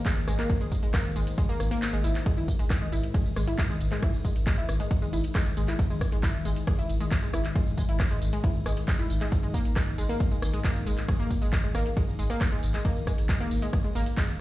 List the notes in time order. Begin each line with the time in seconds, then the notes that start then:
Already playing: G#2 D#3
0.06 G#3, kick, clap, closed hi-hat, ride, tambourine
0.17 G#1, tambourine
0.28 G#1 G#3, cross-stick, open hi-hat, tambourine
0.39 A#3, clap, closed hi-hat, tambourine
0.50 kick, closed hi-hat, ride, tambourine
0.61 G#1 G#3, tambourine
0.72 G#1, kick, open hi-hat, tambourine
0.83 G#1 G#3, closed hi-hat, tambourine
0.94 A#3, kick, cross-stick, clap, closed hi-hat, ride, tambourine
1.05 G#1, tambourine
1.16 G#1 G#3, open hi-hat, tambourine
1.27 closed hi-hat, tambourine
1.38 G#3, kick, closed hi-hat, ride, tambourine
1.49 G#1 A#3, tambourine
1.60 G#1, cross-stick, open hi-hat, tambourine
1.71 A#3, closed hi-hat, tambourine
1.82 clap, closed hi-hat, ride, tambourine
1.93 G#1 G#3, tambourine
2.04 G#1 E4, open hi-hat, tambourine
2.15 clap, closed hi-hat, tambourine
2.26 G#2 D#3 G#3, kick, closed hi-hat, ride, tambourine
2.37 G#1 E4, tambourine
2.48 G#1, kick, open hi-hat, tambourine
2.59 G#1 G#3, closed hi-hat, tambourine
2.70 kick, cross-stick, clap, closed hi-hat, ride, tambourine
2.81 G#1 G#3
2.92 G#1 E4, open hi-hat, tambourine
3.03 closed hi-hat, tambourine
3.14 G#3, kick, closed hi-hat, ride, tambourine
3.25 G#1, tambourine
3.36 G#1 G#3, cross-stick, open hi-hat, tambourine
3.48 E4, closed hi-hat, tambourine
3.58 kick, clap, closed hi-hat, ride, tambourine
3.70 G#1 G#3, tambourine
3.81 G#1, open hi-hat, tambourine
3.92 G#3, clap, closed hi-hat, tambourine
4.03 E4, kick, cross-stick, closed hi-hat, ride, tambourine
4.14 G#1, tambourine
4.25 G#1 G#3, kick, open hi-hat, tambourine
4.36 G#1, closed hi-hat, tambourine
4.47 G#3, kick, clap, closed hi-hat, ride, tambourine
4.58 G#1 E4
4.69 G#1, cross-stick, open hi-hat, tambourine
4.80 G#3, closed hi-hat, tambourine
4.91 kick, closed hi-hat, ride, tambourine
5.02 G#1 G#3, tambourine
5.13 G#1 E4, open hi-hat, tambourine
5.24 closed hi-hat, tambourine
5.35 G#3, kick, cross-stick, clap, closed hi-hat, ride, tambourine
5.46 G#1, tambourine
5.57 G#1 G#3, open hi-hat, tambourine
5.68 E4, clap, closed hi-hat, tambourine
5.79 kick, closed hi-hat, ride, tambourine
5.90 G#1 G#3, tambourine
6.01 G#1, kick, cross-stick, open hi-hat, tambourine
6.12 G#1 G#3, closed hi-hat, tambourine
6.23 E4, kick, clap, closed hi-hat, ride, tambourine
6.34 G#1
6.45 G#1 G#3, open hi-hat, tambourine
6.56 closed hi-hat, tambourine
6.67 G#3, kick, cross-stick, closed hi-hat, ride, tambourine
6.78 G#1 E4, tambourine
6.89 G#1, open hi-hat, tambourine
7.00 G#3, closed hi-hat, tambourine
7.11 kick, clap, closed hi-hat, ride, tambourine
7.23 G#1 G#3, tambourine
7.34 G#1 E4, cross-stick, open hi-hat, tambourine
7.45 clap, closed hi-hat, tambourine
7.56 G#3, kick, closed hi-hat, ride, tambourine
7.67 G#1, tambourine
7.78 G#1 G#3, kick, open hi-hat, tambourine
7.89 G#1 E4, closed hi-hat, tambourine
8.00 kick, cross-stick, clap, closed hi-hat, ride, tambourine
8.11 G#1 G#3, tambourine
8.22 G#1, open hi-hat, tambourine
8.33 G#3, closed hi-hat, tambourine
8.44 E4, kick, closed hi-hat, ride, tambourine
8.55 G#1, tambourine
8.66 G#1 G#3, cross-stick, open hi-hat, tambourine
8.77 closed hi-hat, tambourine
8.88 G#3, kick, clap, closed hi-hat, ride, tambourine
8.99 G#1 E4, tambourine
9.10 G#1, open hi-hat, tambourine
9.21 G#3, clap, closed hi-hat, tambourine
9.32 kick, closed hi-hat, ride, tambourine
9.43 G#1 G#3, tambourine
9.54 G#1 A#3, kick, open hi-hat, tambourine
9.65 G#1, closed hi-hat, tambourine
9.76 G#3, kick, cross-stick, clap, closed hi-hat, ride, tambourine
9.87 G#1
9.98 G#1 G#3, open hi-hat, tambourine
10.09 A#3, closed hi-hat, tambourine
10.20 kick, closed hi-hat, ride, tambourine
10.31 G#1 G#3, tambourine
10.42 G#1, cross-stick, open hi-hat, tambourine
10.54 G#3, closed hi-hat, tambourine
10.64 A#3, kick, clap, closed hi-hat, ride, tambourine
10.75 G#1, tambourine
10.86 G#1 G#3, open hi-hat, tambourine
10.98 clap, closed hi-hat, tambourine
11.08 G#3, kick, cross-stick, closed hi-hat, ride, tambourine
11.20 G#1 A#3, tambourine
11.31 G#1, kick, open hi-hat, tambourine
11.42 G#1 G#3, closed hi-hat, tambourine
11.53 kick, clap, closed hi-hat, ride, tambourine
11.64 G#1 G#3
11.75 G#1 A#3, cross-stick, open hi-hat, tambourine
11.86 closed hi-hat, tambourine
11.97 G#3, kick, closed hi-hat, ride, tambourine
12.08 G#1, tambourine
12.19 G#1 G#3, open hi-hat, tambourine
12.30 A#3, closed hi-hat, tambourine
12.41 kick, cross-stick, clap, closed hi-hat, ride, tambourine
12.52 G#1 G#3, tambourine
12.63 G#1, open hi-hat, tambourine
12.74 G#3, clap, closed hi-hat, tambourine
12.85 A#3, kick, closed hi-hat, ride, tambourine
12.96 G#1, tambourine
13.07 G#1 G#3, kick, cross-stick, open hi-hat, tambourine
13.18 G#1, closed hi-hat, tambourine
13.29 G#3, kick, clap, closed hi-hat, ride, tambourine
13.40 G#1 A#3
13.51 G#1, open hi-hat, tambourine
13.62 G#3, closed hi-hat, tambourine
13.73 kick, cross-stick, closed hi-hat, ride, tambourine
13.84 G#1 G#3, tambourine
13.95 G#1 A#3, open hi-hat, tambourine
14.06 closed hi-hat, tambourine
14.17 G#3, kick, clap, closed hi-hat, ride, tambourine
14.28 G#1, tambourine